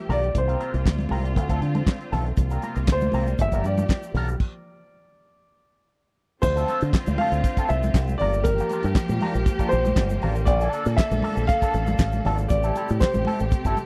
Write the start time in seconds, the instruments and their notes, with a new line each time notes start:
Already playing: string section F3 A#3 G4, grand piano E5
0.09 fingered electric bass B1, clean electric guitar G3 D4 F4 A#4, grand piano D5, snare, open hi-hat, muted conga, low conga
0.22 muted clean electric guitar stroke, closed hi-hat
0.33 fingered electric bass C2, string section C3 A#3 F4, muted clean electric guitar stroke, kick, closed hi-hat, muted conga, low conga
0.38 grand piano C5
0.48 clean electric guitar G3 C4 F4 A#4, closed hi-hat
0.59 clean electric guitar G3 C4 F4 A#4, closed hi-hat
0.73 fingered electric bass C2, muted clean electric guitar stroke, closed hi-hat
0.86 fingered electric bass D2, kick, snare, clap, muted conga
0.98 muted clean electric guitar stroke, closed hi-hat, high conga
1.09 fingered electric bass C2, clean electric guitar G3 C4 F4 A#4, open hi-hat, muted conga, high conga, low conga
1.25 muted clean electric guitar stroke, closed hi-hat
1.35 fingered electric bass D2, string section D3 C4, muted clean electric guitar stroke, kick, closed hi-hat, muted conga
1.49 fingered electric bass D2, clean electric guitar A3 C4 F4 A4, kick, closed hi-hat
1.61 fingered electric bass D3, muted clean electric guitar stroke, closed hi-hat, muted conga
1.75 muted clean electric guitar stroke, closed hi-hat, high conga
1.87 kick, snare, clap, muted conga
2.00 muted clean electric guitar stroke, closed hi-hat
2.12 fingered electric bass B1, clean electric guitar A3 C4 F4 A4, snare, open hi-hat, low conga
2.26 muted clean electric guitar stroke, closed hi-hat
2.37 fingered electric bass C2, string section C3 A#3 F4, muted clean electric guitar stroke, kick, closed hi-hat, muted conga, low conga, shaker
2.50 clean electric guitar G3 C4 F4 A#4, closed hi-hat, shaker
2.62 clean electric guitar G3 C4 F4 A#4, closed hi-hat, muted conga, shaker
2.76 fingered electric bass C2, muted clean electric guitar stroke, closed hi-hat, shaker
2.88 fingered electric bass D2, kick, snare, clap, muted conga, shaker
2.92 grand piano C5
3.01 muted clean electric guitar stroke, closed hi-hat, high conga, shaker
3.12 fingered electric bass C2, clean electric guitar G3 C4 F4 A#4, open hi-hat, high conga, low conga, shaker
3.27 muted clean electric guitar stroke, closed hi-hat, shaker
3.38 fingered electric bass G1, string section F3 G4, grand piano E5, muted clean electric guitar stroke, kick, closed hi-hat, shaker
3.52 fingered electric bass G1, clean electric guitar G3 D4 F4 A#4, kick, closed hi-hat, shaker
3.64 fingered electric bass G2, grand piano D5, muted clean electric guitar stroke, closed hi-hat, shaker
3.77 muted clean electric guitar stroke, closed hi-hat, high conga, shaker
3.89 kick, snare, clap, muted conga, shaker
4.03 muted clean electric guitar stroke, closed hi-hat, shaker
4.14 fingered electric bass B1, clean electric guitar G3 D4 F4 A#4, snare, open hi-hat, muted conga, low conga
4.28 muted clean electric guitar stroke, closed hi-hat, shaker
4.40 kick, crash
6.42 fingered electric bass D2, string section D3 C4 F4, grand piano C5, muted clean electric guitar stroke, kick, crash, low conga, shaker
6.56 clean electric guitar A3 C4 F4 A4, closed hi-hat, shaker
6.68 clean electric guitar A3 C4 F4 A4, closed hi-hat, muted conga, shaker
6.81 fingered electric bass D3, muted clean electric guitar stroke, closed hi-hat, shaker
6.93 kick, snare, clap, muted conga, shaker
7.06 fingered electric bass D2, muted clean electric guitar stroke, closed hi-hat, high conga, shaker
7.18 clean electric guitar A3 C4 F4 A4, grand piano F5, open hi-hat, muted conga, high conga
7.32 fingered electric bass D2, muted clean electric guitar stroke, closed hi-hat, shaker
7.44 muted clean electric guitar stroke, kick, closed hi-hat, shaker
7.57 clean electric guitar A3 C4 F4 A4, kick, closed hi-hat, shaker
7.69 fingered electric bass C2, grand piano E5, muted clean electric guitar stroke, closed hi-hat, muted conga, shaker
7.83 muted clean electric guitar stroke, closed hi-hat, high conga, shaker
7.94 fingered electric bass C2, kick, snare, clap, muted conga, shaker
8.08 muted clean electric guitar stroke, closed hi-hat, high conga, shaker
8.18 fingered electric bass G1, string section F3 A#3 G4, clean electric guitar A#3 D4 F4 A#4, grand piano D5, open hi-hat, low conga
8.33 muted clean electric guitar stroke, closed hi-hat, shaker
8.44 grand piano A#4, muted clean electric guitar stroke, kick, closed hi-hat, low conga, shaker
8.58 clean electric guitar A#3 D4 F4 A#4, closed hi-hat, shaker
8.70 clean electric guitar A#3 D4 F4 A#4, closed hi-hat, muted conga, shaker
8.83 fingered electric bass G2, muted clean electric guitar stroke, closed hi-hat, shaker
8.95 kick, snare, clap, muted conga, shaker
9.08 fingered electric bass A#2, muted clean electric guitar stroke, closed hi-hat, high conga, shaker
9.21 clean electric guitar A#3 D4 F4 A#4, open hi-hat, muted conga, high conga
9.34 fingered electric bass A#1, muted clean electric guitar stroke, closed hi-hat, shaker
9.46 muted clean electric guitar stroke, kick, closed hi-hat, shaker
9.59 clean electric guitar A#3 D4 F4 A#4, kick, closed hi-hat, shaker
9.69 fingered electric bass A#1, grand piano C5, muted clean electric guitar stroke, closed hi-hat, muted conga, shaker
9.85 muted clean electric guitar stroke, closed hi-hat, high conga, shaker
9.96 fingered electric bass G1, kick, snare, clap, muted conga, shaker
10.09 muted clean electric guitar stroke, closed hi-hat, high conga, shaker
10.22 fingered electric bass A1, clean electric guitar A#3 D4 F4 A#4, open hi-hat, low conga
10.35 muted clean electric guitar stroke, closed hi-hat, shaker
10.45 fingered electric bass A#1, string section D3 A4, grand piano D5, muted clean electric guitar stroke, kick, closed hi-hat, low conga, shaker
10.61 clean electric guitar F3 A#3 D4 A4, closed hi-hat, shaker
10.73 clean electric guitar F3 A#3 D4 A4, closed hi-hat, shaker
10.86 fingered electric bass A#2, muted clean electric guitar stroke, closed hi-hat, shaker
10.97 grand piano E5, kick, snare, clap, shaker
11.11 fingered electric bass A#1, muted clean electric guitar stroke, closed hi-hat, high conga, shaker
11.22 clean electric guitar F3 A#3 D4 A4, open hi-hat, high conga
11.36 fingered electric bass A#1, muted clean electric guitar stroke, closed hi-hat, shaker
11.47 grand piano F5, muted clean electric guitar stroke, kick, closed hi-hat, muted conga, shaker
11.62 clean electric guitar F3 A#3 D4 A4, kick, closed hi-hat, shaker
11.74 fingered electric bass A1, muted clean electric guitar stroke, closed hi-hat, muted conga, shaker
11.87 muted clean electric guitar stroke, closed hi-hat, high conga, shaker
11.99 fingered electric bass A1, kick, snare, clap, muted conga, shaker
12.12 muted clean electric guitar stroke, closed hi-hat, high conga, shaker
12.25 fingered electric bass G#1, clean electric guitar F3 A#3 D4 A4, snare, open hi-hat, low conga
12.38 muted clean electric guitar stroke, closed hi-hat, shaker
12.49 fingered electric bass A1, string section C3 A3 G4, grand piano D5, muted clean electric guitar stroke, kick, closed hi-hat, muted conga, low conga, shaker
12.63 clean electric guitar G3 C4 E4 A4, closed hi-hat, shaker
12.76 clean electric guitar G3 C4 E4 A4, closed hi-hat, muted conga, shaker
12.88 fingered electric bass A2, muted clean electric guitar stroke, closed hi-hat, shaker
13.00 grand piano C5, kick, snare, clap, muted conga, shaker
13.14 fingered electric bass A1, muted clean electric guitar stroke, closed hi-hat, high conga, shaker
13.25 clean electric guitar G3 C4 E4 A4, open hi-hat, high conga
13.39 fingered electric bass A1, muted clean electric guitar stroke, closed hi-hat, shaker
13.51 muted clean electric guitar stroke, kick, closed hi-hat, shaker
13.65 fingered electric bass G1, clean electric guitar G3 C4 E4 A4, kick, closed hi-hat, shaker
13.77 muted clean electric guitar stroke, closed hi-hat, muted conga, shaker